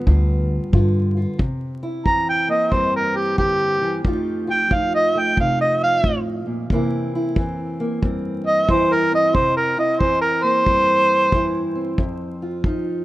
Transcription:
Already playing: steel-string acoustic guitar D3 B3
0.07 upright bass D2, steel-string acoustic guitar G2 F4, kick
0.73 upright bass G2, steel-string acoustic guitar D3 F4, kick
1.17 steel-string acoustic guitar F4
1.38 steel-string acoustic guitar C3, kick
1.83 steel-string acoustic guitar E4
2.05 steel-string acoustic guitar E3 C4, harmonica A#5, kick
2.29 harmonica G5
2.48 steel-string acoustic guitar A#3, harmonica D#5
2.72 steel-string acoustic guitar G2 C4, harmonica C5, kick
2.96 harmonica A#4
3.16 harmonica G4
3.38 steel-string acoustic guitar D3, harmonica G4, kick
3.81 steel-string acoustic guitar E3
4.04 steel-string acoustic guitar F2 F3 A3 D#4 F4, kick
4.47 steel-string acoustic guitar F4, harmonica G5
4.71 steel-string acoustic guitar F3 D#4, harmonica F5, kick
4.95 harmonica D#5
5.15 steel-string acoustic guitar A3
5.20 harmonica G5
5.37 steel-string acoustic guitar C3 D#4, harmonica F5, kick
5.60 harmonica D#5
5.83 harmonica F5
6.04 steel-string acoustic guitar A2, kick
6.47 steel-string acoustic guitar A#2
6.70 steel-string acoustic guitar C3 E3 A#3 C4 E4, kick
7.15 steel-string acoustic guitar E4
7.36 steel-string acoustic guitar E3 C4, kick
7.80 steel-string acoustic guitar A#3
8.02 steel-string acoustic guitar G2 C4, kick
8.46 harmonica D#5
8.69 steel-string acoustic guitar E3 E4, harmonica C5, kick
8.93 harmonica A#4
9.12 steel-string acoustic guitar C4, harmonica D#5
9.33 steel-string acoustic guitar C3, harmonica C5, kick
9.57 harmonica A#4
9.77 steel-string acoustic guitar E4, harmonica D#5
9.99 steel-string acoustic guitar E3 C4, harmonica C5, kick
10.21 harmonica A#4
10.43 steel-string acoustic guitar A#3, harmonica C5
10.66 steel-string acoustic guitar G2 C4, kick
11.32 steel-string acoustic guitar E3 E4, kick
11.75 steel-string acoustic guitar C4
11.98 steel-string acoustic guitar F2, kick
12.42 steel-string acoustic guitar F4
12.64 steel-string acoustic guitar F3 D#4, kick

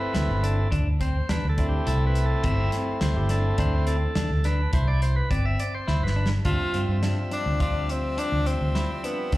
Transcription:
Already playing: tonewheel organ A3 C4 E4 B4
0.14 fingered electric bass D2, clean electric guitar E4, snare, closed hi-hat
0.29 fingered electric bass G1
0.43 clean electric guitar D4, tonewheel organ A4, closed hi-hat
0.72 fingered electric bass D2, clean electric guitar D4, kick, closed hi-hat
1.01 clean electric guitar C4, tonewheel organ C5, kick, closed hi-hat
1.29 fingered electric bass E2, clean electric guitar D4, tonewheel organ B4, snare, closed hi-hat
1.44 fingered electric bass D2
1.49 tonewheel organ A4
1.58 tonewheel organ A3 C4 E4, clean electric guitar D4, kick, closed hi-hat
1.69 tonewheel organ G4
1.87 fingered electric bass C2, clean electric guitar E4, tonewheel organ A4, closed hi-hat
2.07 tonewheel organ B4
2.15 closed hi-hat
2.26 tonewheel organ A4
2.44 fingered electric bass G1, clean electric guitar C4, tonewheel organ E5, kick, closed hi-hat
2.72 snare, closed hi-hat
3.01 fingered electric bass D2, clean electric guitar E4, tonewheel organ C5, snare, closed hi-hat
3.16 fingered electric bass G1, tonewheel organ G4
3.29 clean electric guitar D4, tonewheel organ A4, snare, closed hi-hat
3.58 fingered electric bass D2, tonewheel organ A3 C4 E4 C5, clean electric guitar D4, kick, closed hi-hat
3.87 clean electric guitar C4, tonewheel organ A4, closed hi-hat
4.15 fingered electric bass E2, clean electric guitar D4, snare, closed hi-hat
4.30 fingered electric bass D2
4.44 clean electric guitar D4, tonewheel organ B4, snare, closed hi-hat
4.73 fingered electric bass C2, clean electric guitar E4, tonewheel organ C5, kick, closed hi-hat
4.88 tonewheel organ D5
5.02 tonewheel organ C5, closed hi-hat
5.16 tonewheel organ B4
5.31 fingered electric bass G1, clean electric guitar C4, tonewheel organ D5, kick, closed hi-hat
5.46 tonewheel organ E5
5.59 tonewheel organ D5, closed hi-hat
5.75 tonewheel organ C5
5.88 fingered electric bass D2, clean electric guitar E4, snare
6.03 fingered electric bass G1, tonewheel organ B4
6.07 snare
6.16 clean electric guitar D4
6.26 snare
6.45 fingered electric bass D2, tonewheel organ F3 G3 C4 E5, clean electric guitar D4, tenor saxophone F4, kick, closed hi-hat
6.74 fingered electric bass G2, clean electric guitar C4, closed hi-hat
6.89 fingered electric bass G2
7.03 clean electric guitar D4, snare, closed hi-hat
7.31 clean electric guitar D4, tenor saxophone D4, closed hi-hat
7.46 fingered electric bass D2
7.60 tenor saxophone D4, clean electric guitar F4, kick, closed hi-hat
7.89 tenor saxophone C4, closed hi-hat
8.17 clean electric guitar D4, tenor saxophone D4, closed hi-hat
8.32 fingered electric bass D2
8.46 tenor saxophone C4, closed hi-hat
8.61 fingered electric bass D2
8.75 clean electric guitar E4, snare, closed hi-hat
9.04 tenor saxophone B3, clean electric guitar D4, closed hi-hat
9.32 fingered electric bass D2, tenor saxophone C4, clean electric guitar D4, kick, closed hi-hat

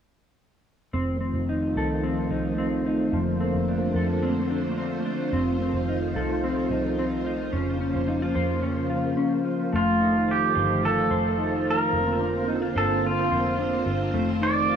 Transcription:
0.93 picked electric bass F1, string machine D#3 F3 A3 F4 C5, clean electric guitar C4
1.21 clean electric guitar C4
1.34 picked electric bass F1
1.49 clean electric guitar D#4
1.76 picked electric bass C2, clean electric guitar A4
2.03 clean electric guitar C4
2.30 picked electric bass C2, clean electric guitar D#4
2.58 clean electric guitar C4
2.86 clean electric guitar D#4
3.12 picked electric bass F1, string machine D3 A#3, clean electric guitar F3
3.40 clean electric guitar C4
3.54 picked electric bass F1
3.68 clean electric guitar D4
3.95 picked electric bass F2, clean electric guitar A4
4.22 clean electric guitar C4
4.50 clean electric guitar D4
4.78 clean electric guitar C4
5.05 clean electric guitar D4
5.33 picked electric bass F1, string machine D#3 F3, clean electric guitar C4
5.61 clean electric guitar C4
5.74 picked electric bass F1
5.89 clean electric guitar D#4
6.15 picked electric bass C2, clean electric guitar A4
6.44 clean electric guitar C4
6.71 picked electric bass C2, clean electric guitar D#4
6.99 clean electric guitar C4
7.26 clean electric guitar D#4
7.53 picked electric bass F1, string machine C#3 F3 A#3, clean electric guitar C#4
7.81 clean electric guitar C#4
7.95 picked electric bass F1
8.08 clean electric guitar D#4
8.22 clean electric guitar F4
8.35 picked electric bass F2, clean electric guitar C5
8.62 clean electric guitar C#4
8.90 clean electric guitar F4
9.17 clean electric guitar C#4
9.45 clean electric guitar F4
9.73 picked electric bass F1, string machine D#3 F3 A3 F4 C5, clean electric guitar A3, pedal steel guitar F4
10.01 clean electric guitar D#4
10.28 clean electric guitar F4, pedal steel guitar G4
10.55 picked electric bass G1, clean electric guitar C5
10.83 clean electric guitar F4, pedal steel guitar A4
11.11 picked electric bass F1, clean electric guitar C5
11.38 clean electric guitar D#4
11.65 clean electric guitar F4
11.71 pedal steel guitar A#4
11.93 picked electric bass F1, string machine D3 A#3 C4
12.20 clean electric guitar D4
12.48 clean electric guitar D#4
12.62 clean electric guitar F4
12.76 picked electric bass G1, pedal steel guitar A4, clean electric guitar C5
13.04 clean electric guitar F4, pedal steel guitar F4
13.31 picked electric bass F1, clean electric guitar C5
13.59 clean electric guitar D4
13.86 picked electric bass G1, clean electric guitar F4
14.13 picked electric bass F1, string machine D#3 F3, clean electric guitar A3
14.41 clean electric guitar D#4, pedal steel guitar D5
14.69 clean electric guitar F4

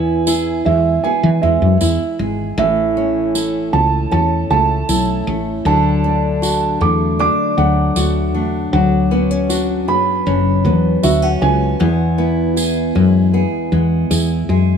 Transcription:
Already playing: fretless electric bass E2, nylon-string guitar E2 B3, steel-string acoustic guitar B3 E4, upright piano G#5
0.27 nylon-string guitar E4, steel-string acoustic guitar G#4, tambourine
0.65 fretless electric bass E2, nylon-string guitar G#3, steel-string acoustic guitar E4, upright piano E5
1.04 nylon-string guitar B3, steel-string acoustic guitar G#4, upright piano G#5
1.23 fretless electric bass E3
1.42 fretless electric bass E2, nylon-string guitar G#3, steel-string acoustic guitar B3, upright piano E5
1.62 fretless electric bass F#2
1.81 fretless electric bass E2, nylon-string guitar E4, steel-string acoustic guitar E4, tambourine
2.19 fretless electric bass G#1, nylon-string guitar G#3, steel-string acoustic guitar G#4
2.58 fretless electric bass A1, nylon-string guitar A2, steel-string acoustic guitar E3, upright piano E5
2.97 nylon-string guitar C#4, steel-string acoustic guitar C#4
3.35 nylon-string guitar E4, steel-string acoustic guitar A4, tambourine
3.73 fretless electric bass C#2, nylon-string guitar A3, steel-string acoustic guitar C#4, upright piano A5
4.11 fretless electric bass E2, nylon-string guitar C#4, steel-string acoustic guitar A4, upright piano A5
4.50 fretless electric bass C#2, nylon-string guitar A3, steel-string acoustic guitar A3, upright piano A5
4.89 fretless electric bass B1, steel-string acoustic guitar C#4, nylon-string guitar E4, tambourine
5.27 fretless electric bass A1, nylon-string guitar A3, steel-string acoustic guitar A4
5.65 fretless electric bass D2, nylon-string guitar D3, steel-string acoustic guitar F#3, upright piano A5
6.04 steel-string acoustic guitar A3, nylon-string guitar D4
6.42 steel-string acoustic guitar D4, nylon-string guitar F#4, tambourine
6.81 fretless electric bass E2, nylon-string guitar A3, steel-string acoustic guitar A3, upright piano D6
7.19 steel-string acoustic guitar D4, nylon-string guitar D4, upright piano D6
7.58 fretless electric bass D2, steel-string acoustic guitar F#3, nylon-string guitar A3, upright piano F#5
7.96 fretless electric bass D2, steel-string acoustic guitar A3, nylon-string guitar F#4, tambourine
8.35 fretless electric bass E2, nylon-string guitar A3, steel-string acoustic guitar D4
8.73 fretless electric bass D2, steel-string acoustic guitar F#3, upright piano F#5
9.11 nylon-string guitar B3, steel-string acoustic guitar C#4
9.31 nylon-string guitar C#4
9.49 steel-string acoustic guitar D4, nylon-string guitar F#4, tambourine
9.88 fretless electric bass F#2, nylon-string guitar B3, steel-string acoustic guitar C#4, upright piano B5
10.26 fretless electric bass F#1, nylon-string guitar C#4, steel-string acoustic guitar D4
10.64 fretless electric bass E2, steel-string acoustic guitar F#3, nylon-string guitar B3
11.03 fretless electric bass D2, steel-string acoustic guitar B3, nylon-string guitar F#4, upright piano E5, tambourine
11.22 steel-string acoustic guitar C#4, upright piano F#5
11.41 fretless electric bass C#2, nylon-string guitar B3, steel-string acoustic guitar D4, upright piano G#5
11.79 nylon-string guitar E2, fretless electric bass E2, steel-string acoustic guitar B3
12.18 nylon-string guitar B3, steel-string acoustic guitar E4
12.56 steel-string acoustic guitar G#4, nylon-string guitar G#4, tambourine
12.95 fretless electric bass F#2, nylon-string guitar G#3, steel-string acoustic guitar E4
13.33 nylon-string guitar B3, steel-string acoustic guitar G#4
13.72 fretless electric bass E2, nylon-string guitar G#3, steel-string acoustic guitar B3
14.11 fretless electric bass E2, steel-string acoustic guitar E4, nylon-string guitar G#4, tambourine
14.49 fretless electric bass F#2, nylon-string guitar G#3, steel-string acoustic guitar G#4

